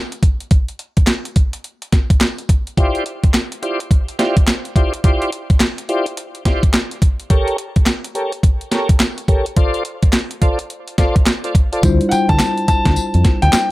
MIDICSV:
0, 0, Header, 1, 7, 480
1, 0, Start_track
1, 0, Key_signature, -1, "minor"
1, 0, Tempo, 566038
1, 433, Time_signature, 4, 2, 24, 8
1, 11629, End_track
2, 0, Start_track
2, 0, Title_t, "Grand piano"
2, 0, Program_c, 0, 0
2, 10251, Note_on_c, 0, 78, 73
2, 10274, Note_off_c, 0, 78, 0
2, 10275, Note_on_c, 0, 79, 100
2, 10423, Note_on_c, 0, 81, 113
2, 10428, Note_off_c, 0, 79, 0
2, 10742, Note_off_c, 0, 81, 0
2, 10754, Note_on_c, 0, 81, 115
2, 11382, Note_on_c, 0, 79, 109
2, 11402, Note_off_c, 0, 81, 0
2, 11629, Note_off_c, 0, 79, 0
2, 11629, End_track
3, 0, Start_track
3, 0, Title_t, "Tonewheel organ"
3, 0, Program_c, 1, 16
3, 2351, Note_on_c, 1, 64, 82
3, 2353, Note_on_c, 1, 65, 77
3, 2353, Note_on_c, 1, 67, 75
3, 2355, Note_on_c, 1, 72, 74
3, 2357, Note_on_c, 1, 74, 92
3, 2578, Note_off_c, 1, 64, 0
3, 2579, Note_off_c, 1, 65, 0
3, 2579, Note_off_c, 1, 67, 0
3, 2579, Note_off_c, 1, 72, 0
3, 2581, Note_off_c, 1, 74, 0
3, 3072, Note_on_c, 1, 64, 76
3, 3073, Note_on_c, 1, 65, 65
3, 3075, Note_on_c, 1, 67, 63
3, 3076, Note_on_c, 1, 72, 66
3, 3076, Note_on_c, 1, 74, 81
3, 3217, Note_off_c, 1, 64, 0
3, 3218, Note_off_c, 1, 65, 0
3, 3219, Note_off_c, 1, 67, 0
3, 3219, Note_off_c, 1, 72, 0
3, 3219, Note_off_c, 1, 74, 0
3, 3550, Note_on_c, 1, 64, 71
3, 3552, Note_on_c, 1, 65, 67
3, 3553, Note_on_c, 1, 67, 65
3, 3554, Note_on_c, 1, 72, 65
3, 3556, Note_on_c, 1, 74, 83
3, 3696, Note_off_c, 1, 64, 0
3, 3697, Note_off_c, 1, 65, 0
3, 3698, Note_off_c, 1, 67, 0
3, 3698, Note_off_c, 1, 72, 0
3, 3699, Note_off_c, 1, 74, 0
3, 4033, Note_on_c, 1, 64, 68
3, 4033, Note_on_c, 1, 65, 67
3, 4035, Note_on_c, 1, 67, 66
3, 4036, Note_on_c, 1, 72, 66
3, 4037, Note_on_c, 1, 74, 80
3, 4178, Note_off_c, 1, 64, 0
3, 4178, Note_off_c, 1, 65, 0
3, 4179, Note_off_c, 1, 67, 0
3, 4179, Note_off_c, 1, 72, 0
3, 4180, Note_off_c, 1, 74, 0
3, 4272, Note_on_c, 1, 64, 81
3, 4273, Note_on_c, 1, 65, 79
3, 4275, Note_on_c, 1, 67, 78
3, 4276, Note_on_c, 1, 72, 71
3, 4278, Note_on_c, 1, 74, 89
3, 4498, Note_off_c, 1, 64, 0
3, 4499, Note_off_c, 1, 65, 0
3, 4500, Note_off_c, 1, 67, 0
3, 4500, Note_off_c, 1, 72, 0
3, 4501, Note_off_c, 1, 74, 0
3, 4992, Note_on_c, 1, 64, 70
3, 4993, Note_on_c, 1, 65, 65
3, 4994, Note_on_c, 1, 67, 63
3, 4996, Note_on_c, 1, 72, 67
3, 4996, Note_on_c, 1, 74, 84
3, 5137, Note_off_c, 1, 64, 0
3, 5138, Note_off_c, 1, 65, 0
3, 5138, Note_off_c, 1, 67, 0
3, 5139, Note_off_c, 1, 72, 0
3, 5139, Note_off_c, 1, 74, 0
3, 5472, Note_on_c, 1, 64, 74
3, 5473, Note_on_c, 1, 65, 69
3, 5474, Note_on_c, 1, 67, 65
3, 5475, Note_on_c, 1, 72, 70
3, 5477, Note_on_c, 1, 74, 78
3, 5617, Note_off_c, 1, 64, 0
3, 5618, Note_off_c, 1, 65, 0
3, 5618, Note_off_c, 1, 67, 0
3, 5619, Note_off_c, 1, 72, 0
3, 5620, Note_off_c, 1, 74, 0
3, 6190, Note_on_c, 1, 67, 82
3, 6191, Note_on_c, 1, 69, 73
3, 6192, Note_on_c, 1, 70, 81
3, 6195, Note_on_c, 1, 73, 88
3, 6417, Note_off_c, 1, 67, 0
3, 6418, Note_off_c, 1, 69, 0
3, 6418, Note_off_c, 1, 70, 0
3, 6420, Note_off_c, 1, 73, 0
3, 6908, Note_on_c, 1, 67, 74
3, 6911, Note_on_c, 1, 69, 62
3, 6912, Note_on_c, 1, 70, 63
3, 6913, Note_on_c, 1, 73, 78
3, 7056, Note_off_c, 1, 67, 0
3, 7057, Note_off_c, 1, 69, 0
3, 7057, Note_off_c, 1, 70, 0
3, 7058, Note_off_c, 1, 73, 0
3, 7388, Note_on_c, 1, 67, 78
3, 7390, Note_on_c, 1, 69, 72
3, 7391, Note_on_c, 1, 70, 67
3, 7393, Note_on_c, 1, 73, 77
3, 7535, Note_off_c, 1, 67, 0
3, 7536, Note_off_c, 1, 69, 0
3, 7537, Note_off_c, 1, 70, 0
3, 7538, Note_off_c, 1, 73, 0
3, 7869, Note_on_c, 1, 67, 76
3, 7871, Note_on_c, 1, 69, 65
3, 7872, Note_on_c, 1, 70, 67
3, 7874, Note_on_c, 1, 73, 83
3, 8016, Note_off_c, 1, 67, 0
3, 8017, Note_off_c, 1, 69, 0
3, 8017, Note_off_c, 1, 70, 0
3, 8018, Note_off_c, 1, 73, 0
3, 8111, Note_on_c, 1, 65, 84
3, 8111, Note_on_c, 1, 69, 84
3, 8113, Note_on_c, 1, 72, 84
3, 8115, Note_on_c, 1, 74, 93
3, 8338, Note_off_c, 1, 65, 0
3, 8338, Note_off_c, 1, 69, 0
3, 8339, Note_off_c, 1, 72, 0
3, 8340, Note_off_c, 1, 74, 0
3, 8831, Note_on_c, 1, 65, 73
3, 8832, Note_on_c, 1, 69, 65
3, 8834, Note_on_c, 1, 72, 67
3, 8836, Note_on_c, 1, 74, 83
3, 8977, Note_off_c, 1, 65, 0
3, 8977, Note_off_c, 1, 69, 0
3, 8978, Note_off_c, 1, 72, 0
3, 8979, Note_off_c, 1, 74, 0
3, 9312, Note_on_c, 1, 65, 78
3, 9313, Note_on_c, 1, 69, 73
3, 9315, Note_on_c, 1, 72, 67
3, 9317, Note_on_c, 1, 74, 83
3, 9457, Note_off_c, 1, 65, 0
3, 9458, Note_off_c, 1, 69, 0
3, 9459, Note_off_c, 1, 72, 0
3, 9460, Note_off_c, 1, 74, 0
3, 9701, Note_on_c, 1, 65, 71
3, 9704, Note_on_c, 1, 69, 64
3, 9705, Note_on_c, 1, 72, 58
3, 9707, Note_on_c, 1, 74, 73
3, 9789, Note_off_c, 1, 65, 0
3, 9791, Note_off_c, 1, 69, 0
3, 9791, Note_off_c, 1, 72, 0
3, 9792, Note_off_c, 1, 74, 0
3, 9941, Note_on_c, 1, 65, 73
3, 9943, Note_on_c, 1, 69, 70
3, 9944, Note_on_c, 1, 72, 67
3, 9946, Note_on_c, 1, 74, 88
3, 10029, Note_off_c, 1, 65, 0
3, 10030, Note_off_c, 1, 69, 0
3, 10031, Note_off_c, 1, 72, 0
3, 10032, Note_off_c, 1, 74, 0
3, 11629, End_track
4, 0, Start_track
4, 0, Title_t, "Tine electric piano"
4, 0, Program_c, 2, 4
4, 10031, Note_on_c, 2, 55, 85
4, 10035, Note_on_c, 2, 62, 71
4, 10040, Note_on_c, 2, 64, 78
4, 10046, Note_on_c, 2, 65, 82
4, 10050, Note_on_c, 2, 72, 92
4, 10212, Control_c, 2, 64, 127
4, 11629, Note_off_c, 2, 55, 0
4, 11629, Note_off_c, 2, 62, 0
4, 11629, Note_off_c, 2, 64, 0
4, 11629, Note_off_c, 2, 65, 0
4, 11629, Note_off_c, 2, 72, 0
4, 11629, End_track
5, 0, Start_track
5, 0, Title_t, "Fingered electric bass"
5, 0, Program_c, 3, 33
5, 10035, Note_on_c, 3, 38, 105
5, 10158, Note_off_c, 3, 38, 0
5, 10425, Note_on_c, 3, 50, 98
5, 10499, Note_off_c, 3, 50, 0
5, 10904, Note_on_c, 3, 38, 98
5, 10978, Note_off_c, 3, 38, 0
5, 11147, Note_on_c, 3, 41, 93
5, 11220, Note_off_c, 3, 41, 0
5, 11387, Note_on_c, 3, 38, 86
5, 11460, Note_off_c, 3, 38, 0
5, 11629, End_track
6, 0, Start_track
6, 0, Title_t, "Muted fingered electric bass strokes"
6, 10279, Note_on_c, 9, 29, 46
6, 10364, Note_off_c, 9, 29, 0
6, 10756, Note_on_c, 9, 29, 51
6, 10841, Note_off_c, 9, 29, 0
6, 11629, End_track
7, 0, Start_track
7, 0, Title_t, "Drums"
7, 102, Note_on_c, 9, 42, 48
7, 187, Note_off_c, 9, 42, 0
7, 192, Note_on_c, 9, 36, 90
7, 194, Note_on_c, 9, 42, 70
7, 277, Note_off_c, 9, 36, 0
7, 279, Note_off_c, 9, 42, 0
7, 343, Note_on_c, 9, 42, 52
7, 428, Note_off_c, 9, 42, 0
7, 431, Note_on_c, 9, 42, 71
7, 433, Note_on_c, 9, 36, 105
7, 515, Note_off_c, 9, 42, 0
7, 517, Note_off_c, 9, 36, 0
7, 581, Note_on_c, 9, 42, 52
7, 666, Note_off_c, 9, 42, 0
7, 671, Note_on_c, 9, 42, 59
7, 756, Note_off_c, 9, 42, 0
7, 820, Note_on_c, 9, 42, 48
7, 823, Note_on_c, 9, 36, 80
7, 905, Note_off_c, 9, 42, 0
7, 907, Note_off_c, 9, 36, 0
7, 907, Note_on_c, 9, 39, 88
7, 909, Note_on_c, 9, 38, 115
7, 910, Note_on_c, 9, 42, 61
7, 992, Note_off_c, 9, 39, 0
7, 993, Note_off_c, 9, 38, 0
7, 995, Note_off_c, 9, 42, 0
7, 1062, Note_on_c, 9, 42, 50
7, 1147, Note_off_c, 9, 42, 0
7, 1152, Note_on_c, 9, 42, 75
7, 1154, Note_on_c, 9, 36, 83
7, 1237, Note_off_c, 9, 42, 0
7, 1238, Note_off_c, 9, 36, 0
7, 1299, Note_on_c, 9, 42, 54
7, 1384, Note_off_c, 9, 42, 0
7, 1393, Note_on_c, 9, 42, 65
7, 1478, Note_off_c, 9, 42, 0
7, 1543, Note_on_c, 9, 42, 47
7, 1628, Note_off_c, 9, 42, 0
7, 1632, Note_on_c, 9, 38, 65
7, 1633, Note_on_c, 9, 36, 83
7, 1633, Note_on_c, 9, 42, 75
7, 1717, Note_off_c, 9, 38, 0
7, 1718, Note_off_c, 9, 36, 0
7, 1718, Note_off_c, 9, 42, 0
7, 1782, Note_on_c, 9, 36, 92
7, 1782, Note_on_c, 9, 42, 52
7, 1867, Note_off_c, 9, 36, 0
7, 1867, Note_off_c, 9, 42, 0
7, 1872, Note_on_c, 9, 39, 93
7, 1874, Note_on_c, 9, 38, 114
7, 1875, Note_on_c, 9, 42, 69
7, 1957, Note_off_c, 9, 39, 0
7, 1959, Note_off_c, 9, 38, 0
7, 1960, Note_off_c, 9, 42, 0
7, 2022, Note_on_c, 9, 42, 46
7, 2107, Note_off_c, 9, 42, 0
7, 2112, Note_on_c, 9, 36, 86
7, 2115, Note_on_c, 9, 42, 73
7, 2197, Note_off_c, 9, 36, 0
7, 2200, Note_off_c, 9, 42, 0
7, 2265, Note_on_c, 9, 42, 53
7, 2349, Note_off_c, 9, 42, 0
7, 2353, Note_on_c, 9, 36, 118
7, 2353, Note_on_c, 9, 42, 70
7, 2438, Note_off_c, 9, 36, 0
7, 2438, Note_off_c, 9, 42, 0
7, 2501, Note_on_c, 9, 42, 50
7, 2586, Note_off_c, 9, 42, 0
7, 2593, Note_on_c, 9, 42, 65
7, 2678, Note_off_c, 9, 42, 0
7, 2744, Note_on_c, 9, 36, 87
7, 2744, Note_on_c, 9, 42, 53
7, 2829, Note_off_c, 9, 36, 0
7, 2829, Note_off_c, 9, 42, 0
7, 2832, Note_on_c, 9, 39, 89
7, 2834, Note_on_c, 9, 38, 119
7, 2835, Note_on_c, 9, 42, 61
7, 2917, Note_off_c, 9, 39, 0
7, 2918, Note_off_c, 9, 38, 0
7, 2920, Note_off_c, 9, 42, 0
7, 2984, Note_on_c, 9, 42, 54
7, 3069, Note_off_c, 9, 42, 0
7, 3076, Note_on_c, 9, 42, 72
7, 3160, Note_off_c, 9, 42, 0
7, 3224, Note_on_c, 9, 42, 48
7, 3309, Note_off_c, 9, 42, 0
7, 3313, Note_on_c, 9, 36, 88
7, 3317, Note_on_c, 9, 42, 71
7, 3398, Note_off_c, 9, 36, 0
7, 3401, Note_off_c, 9, 42, 0
7, 3464, Note_on_c, 9, 42, 46
7, 3549, Note_off_c, 9, 42, 0
7, 3554, Note_on_c, 9, 38, 70
7, 3555, Note_on_c, 9, 42, 72
7, 3639, Note_off_c, 9, 38, 0
7, 3640, Note_off_c, 9, 42, 0
7, 3703, Note_on_c, 9, 36, 94
7, 3704, Note_on_c, 9, 42, 55
7, 3788, Note_off_c, 9, 36, 0
7, 3789, Note_off_c, 9, 42, 0
7, 3794, Note_on_c, 9, 39, 86
7, 3796, Note_on_c, 9, 38, 113
7, 3797, Note_on_c, 9, 42, 71
7, 3879, Note_off_c, 9, 39, 0
7, 3881, Note_off_c, 9, 38, 0
7, 3882, Note_off_c, 9, 42, 0
7, 3945, Note_on_c, 9, 42, 49
7, 4029, Note_off_c, 9, 42, 0
7, 4034, Note_on_c, 9, 36, 96
7, 4037, Note_on_c, 9, 42, 70
7, 4118, Note_off_c, 9, 36, 0
7, 4122, Note_off_c, 9, 42, 0
7, 4185, Note_on_c, 9, 42, 52
7, 4270, Note_off_c, 9, 42, 0
7, 4274, Note_on_c, 9, 36, 106
7, 4275, Note_on_c, 9, 42, 69
7, 4359, Note_off_c, 9, 36, 0
7, 4359, Note_off_c, 9, 42, 0
7, 4424, Note_on_c, 9, 42, 50
7, 4509, Note_off_c, 9, 42, 0
7, 4515, Note_on_c, 9, 42, 68
7, 4600, Note_off_c, 9, 42, 0
7, 4663, Note_on_c, 9, 42, 48
7, 4664, Note_on_c, 9, 36, 83
7, 4748, Note_off_c, 9, 42, 0
7, 4749, Note_off_c, 9, 36, 0
7, 4750, Note_on_c, 9, 39, 90
7, 4752, Note_on_c, 9, 38, 107
7, 4754, Note_on_c, 9, 42, 56
7, 4835, Note_off_c, 9, 39, 0
7, 4837, Note_off_c, 9, 38, 0
7, 4839, Note_off_c, 9, 42, 0
7, 4903, Note_on_c, 9, 42, 51
7, 4988, Note_off_c, 9, 42, 0
7, 4994, Note_on_c, 9, 42, 68
7, 5079, Note_off_c, 9, 42, 0
7, 5141, Note_on_c, 9, 42, 51
7, 5226, Note_off_c, 9, 42, 0
7, 5234, Note_on_c, 9, 42, 68
7, 5319, Note_off_c, 9, 42, 0
7, 5383, Note_on_c, 9, 42, 49
7, 5468, Note_off_c, 9, 42, 0
7, 5473, Note_on_c, 9, 36, 81
7, 5473, Note_on_c, 9, 38, 64
7, 5474, Note_on_c, 9, 42, 72
7, 5557, Note_off_c, 9, 38, 0
7, 5558, Note_off_c, 9, 36, 0
7, 5558, Note_off_c, 9, 42, 0
7, 5622, Note_on_c, 9, 36, 87
7, 5623, Note_on_c, 9, 42, 52
7, 5707, Note_off_c, 9, 36, 0
7, 5708, Note_off_c, 9, 42, 0
7, 5712, Note_on_c, 9, 39, 99
7, 5714, Note_on_c, 9, 38, 114
7, 5715, Note_on_c, 9, 42, 70
7, 5797, Note_off_c, 9, 39, 0
7, 5799, Note_off_c, 9, 38, 0
7, 5800, Note_off_c, 9, 42, 0
7, 5863, Note_on_c, 9, 42, 49
7, 5947, Note_off_c, 9, 42, 0
7, 5952, Note_on_c, 9, 36, 92
7, 5954, Note_on_c, 9, 42, 77
7, 6037, Note_off_c, 9, 36, 0
7, 6039, Note_off_c, 9, 42, 0
7, 6102, Note_on_c, 9, 42, 50
7, 6187, Note_off_c, 9, 42, 0
7, 6191, Note_on_c, 9, 42, 69
7, 6192, Note_on_c, 9, 36, 113
7, 6276, Note_off_c, 9, 42, 0
7, 6277, Note_off_c, 9, 36, 0
7, 6340, Note_on_c, 9, 42, 52
7, 6425, Note_off_c, 9, 42, 0
7, 6431, Note_on_c, 9, 42, 62
7, 6516, Note_off_c, 9, 42, 0
7, 6580, Note_on_c, 9, 42, 48
7, 6582, Note_on_c, 9, 36, 82
7, 6665, Note_off_c, 9, 42, 0
7, 6667, Note_off_c, 9, 36, 0
7, 6667, Note_on_c, 9, 39, 86
7, 6669, Note_on_c, 9, 38, 112
7, 6670, Note_on_c, 9, 42, 60
7, 6752, Note_off_c, 9, 39, 0
7, 6753, Note_off_c, 9, 38, 0
7, 6755, Note_off_c, 9, 42, 0
7, 6822, Note_on_c, 9, 42, 54
7, 6906, Note_off_c, 9, 42, 0
7, 6912, Note_on_c, 9, 42, 71
7, 6997, Note_off_c, 9, 42, 0
7, 7059, Note_on_c, 9, 42, 47
7, 7144, Note_off_c, 9, 42, 0
7, 7151, Note_on_c, 9, 36, 88
7, 7153, Note_on_c, 9, 42, 67
7, 7236, Note_off_c, 9, 36, 0
7, 7238, Note_off_c, 9, 42, 0
7, 7302, Note_on_c, 9, 42, 46
7, 7387, Note_off_c, 9, 42, 0
7, 7391, Note_on_c, 9, 38, 69
7, 7392, Note_on_c, 9, 42, 71
7, 7476, Note_off_c, 9, 38, 0
7, 7477, Note_off_c, 9, 42, 0
7, 7541, Note_on_c, 9, 36, 93
7, 7542, Note_on_c, 9, 42, 56
7, 7626, Note_off_c, 9, 36, 0
7, 7627, Note_off_c, 9, 42, 0
7, 7631, Note_on_c, 9, 39, 96
7, 7632, Note_on_c, 9, 38, 116
7, 7634, Note_on_c, 9, 42, 67
7, 7715, Note_off_c, 9, 39, 0
7, 7717, Note_off_c, 9, 38, 0
7, 7719, Note_off_c, 9, 42, 0
7, 7783, Note_on_c, 9, 42, 52
7, 7867, Note_off_c, 9, 42, 0
7, 7871, Note_on_c, 9, 36, 94
7, 7873, Note_on_c, 9, 42, 72
7, 7956, Note_off_c, 9, 36, 0
7, 7958, Note_off_c, 9, 42, 0
7, 8023, Note_on_c, 9, 42, 57
7, 8107, Note_off_c, 9, 42, 0
7, 8111, Note_on_c, 9, 42, 69
7, 8112, Note_on_c, 9, 36, 113
7, 8196, Note_off_c, 9, 42, 0
7, 8197, Note_off_c, 9, 36, 0
7, 8261, Note_on_c, 9, 42, 49
7, 8346, Note_off_c, 9, 42, 0
7, 8352, Note_on_c, 9, 42, 68
7, 8437, Note_off_c, 9, 42, 0
7, 8501, Note_on_c, 9, 42, 53
7, 8503, Note_on_c, 9, 36, 85
7, 8586, Note_off_c, 9, 42, 0
7, 8588, Note_off_c, 9, 36, 0
7, 8588, Note_on_c, 9, 39, 87
7, 8590, Note_on_c, 9, 38, 109
7, 8592, Note_on_c, 9, 42, 60
7, 8673, Note_off_c, 9, 39, 0
7, 8675, Note_off_c, 9, 38, 0
7, 8676, Note_off_c, 9, 42, 0
7, 8741, Note_on_c, 9, 42, 53
7, 8825, Note_off_c, 9, 42, 0
7, 8833, Note_on_c, 9, 42, 74
7, 8834, Note_on_c, 9, 36, 78
7, 8918, Note_off_c, 9, 36, 0
7, 8918, Note_off_c, 9, 42, 0
7, 8979, Note_on_c, 9, 42, 53
7, 9064, Note_off_c, 9, 42, 0
7, 9074, Note_on_c, 9, 42, 71
7, 9159, Note_off_c, 9, 42, 0
7, 9222, Note_on_c, 9, 42, 46
7, 9307, Note_off_c, 9, 42, 0
7, 9311, Note_on_c, 9, 38, 61
7, 9312, Note_on_c, 9, 42, 68
7, 9313, Note_on_c, 9, 36, 88
7, 9396, Note_off_c, 9, 38, 0
7, 9397, Note_off_c, 9, 42, 0
7, 9398, Note_off_c, 9, 36, 0
7, 9462, Note_on_c, 9, 36, 92
7, 9463, Note_on_c, 9, 42, 53
7, 9547, Note_off_c, 9, 36, 0
7, 9548, Note_off_c, 9, 42, 0
7, 9551, Note_on_c, 9, 39, 89
7, 9553, Note_on_c, 9, 38, 118
7, 9554, Note_on_c, 9, 42, 68
7, 9636, Note_off_c, 9, 39, 0
7, 9638, Note_off_c, 9, 38, 0
7, 9639, Note_off_c, 9, 42, 0
7, 9702, Note_on_c, 9, 42, 52
7, 9787, Note_off_c, 9, 42, 0
7, 9793, Note_on_c, 9, 36, 99
7, 9795, Note_on_c, 9, 42, 74
7, 9877, Note_off_c, 9, 36, 0
7, 9880, Note_off_c, 9, 42, 0
7, 9944, Note_on_c, 9, 42, 53
7, 10029, Note_off_c, 9, 42, 0
7, 10034, Note_on_c, 9, 36, 121
7, 10034, Note_on_c, 9, 42, 78
7, 10034, Note_on_c, 9, 54, 65
7, 10118, Note_off_c, 9, 36, 0
7, 10118, Note_off_c, 9, 42, 0
7, 10119, Note_off_c, 9, 54, 0
7, 10182, Note_on_c, 9, 42, 58
7, 10267, Note_off_c, 9, 42, 0
7, 10273, Note_on_c, 9, 42, 71
7, 10275, Note_on_c, 9, 54, 64
7, 10358, Note_off_c, 9, 42, 0
7, 10359, Note_off_c, 9, 54, 0
7, 10422, Note_on_c, 9, 42, 54
7, 10424, Note_on_c, 9, 36, 92
7, 10507, Note_off_c, 9, 42, 0
7, 10508, Note_off_c, 9, 36, 0
7, 10510, Note_on_c, 9, 39, 102
7, 10512, Note_on_c, 9, 38, 115
7, 10513, Note_on_c, 9, 42, 66
7, 10513, Note_on_c, 9, 54, 98
7, 10595, Note_off_c, 9, 39, 0
7, 10597, Note_off_c, 9, 38, 0
7, 10598, Note_off_c, 9, 42, 0
7, 10598, Note_off_c, 9, 54, 0
7, 10664, Note_on_c, 9, 42, 56
7, 10749, Note_off_c, 9, 42, 0
7, 10752, Note_on_c, 9, 54, 71
7, 10754, Note_on_c, 9, 36, 96
7, 10754, Note_on_c, 9, 42, 85
7, 10837, Note_off_c, 9, 54, 0
7, 10838, Note_off_c, 9, 42, 0
7, 10839, Note_off_c, 9, 36, 0
7, 10900, Note_on_c, 9, 42, 54
7, 10901, Note_on_c, 9, 36, 93
7, 10901, Note_on_c, 9, 38, 82
7, 10985, Note_off_c, 9, 42, 0
7, 10986, Note_off_c, 9, 36, 0
7, 10986, Note_off_c, 9, 38, 0
7, 10992, Note_on_c, 9, 54, 74
7, 10995, Note_on_c, 9, 42, 74
7, 11076, Note_off_c, 9, 54, 0
7, 11079, Note_off_c, 9, 42, 0
7, 11143, Note_on_c, 9, 42, 53
7, 11228, Note_off_c, 9, 42, 0
7, 11232, Note_on_c, 9, 38, 70
7, 11233, Note_on_c, 9, 42, 83
7, 11234, Note_on_c, 9, 36, 91
7, 11317, Note_off_c, 9, 38, 0
7, 11318, Note_off_c, 9, 36, 0
7, 11318, Note_off_c, 9, 42, 0
7, 11383, Note_on_c, 9, 42, 61
7, 11468, Note_off_c, 9, 42, 0
7, 11472, Note_on_c, 9, 39, 104
7, 11472, Note_on_c, 9, 54, 93
7, 11474, Note_on_c, 9, 38, 127
7, 11475, Note_on_c, 9, 42, 73
7, 11557, Note_off_c, 9, 39, 0
7, 11557, Note_off_c, 9, 54, 0
7, 11559, Note_off_c, 9, 38, 0
7, 11560, Note_off_c, 9, 42, 0
7, 11629, End_track
0, 0, End_of_file